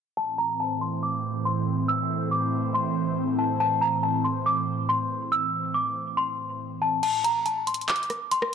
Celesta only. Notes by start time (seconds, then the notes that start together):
0.17 A5
0.38 A#5
0.60 A5
0.81 C6
1.03 D6
1.45 C6
1.88 E6
2.31 D6
2.74 C6
3.39 A5
3.60 A5
3.81 A#5
4.03 A5
4.24 C6
4.46 D6
4.89 C6
5.32 E6
5.74 D6
6.17 C6
6.82 A5
7.03 A5
7.24 A#5
7.46 A5
7.67 C6
7.89 D6
8.32 C6